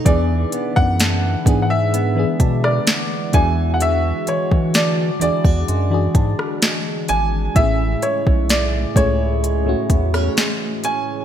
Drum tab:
HH |x-x-x-x-x-x-x-x-|x-x-x-x-x-x-x-x-|x-x-x-x-x-x-x-x-|
SD |----o------ro---|----o------ro---|----o------ro---|
BD |o--o--o---o---o-|---o---o--o-----|o--o--o---o-----|